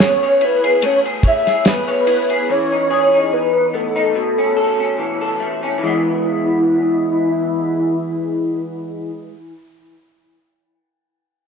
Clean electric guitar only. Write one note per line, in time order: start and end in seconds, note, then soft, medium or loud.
0.00 0.81 A3 medium
0.00 1.65 B3 medium
0.00 0.64 G#4 medium
0.00 0.22 C#5 medium
0.23 1.23 C#5 medium
0.41 2.06 E4 medium
0.64 1.05 G#4 medium
0.83 2.49 A3 medium
1.05 1.46 G#4 medium
1.24 1.87 C#5 medium
1.47 2.29 G#4 medium
1.65 3.74 B3 medium
1.88 2.57 C#5 medium
2.07 2.75 E4 medium
2.30 2.58 G#4 medium
2.50 4.15 E3 medium
2.72 3.12 D#4 medium
2.91 3.55 G#4 medium
3.13 3.95 D#4 medium
3.74 4.41 B3 medium
3.96 4.24 D#4 medium
4.15 5.78 B2 medium
4.38 4.79 C#4 medium
4.57 5.20 A4 medium
4.80 5.62 C#4 medium
4.98 5.78 E3 medium
5.21 5.90 A4 medium
5.40 5.86 A3 medium
5.63 5.90 C#4 medium
5.78 9.28 E3 medium
5.83 9.33 G#3 medium
5.83 9.37 B3 medium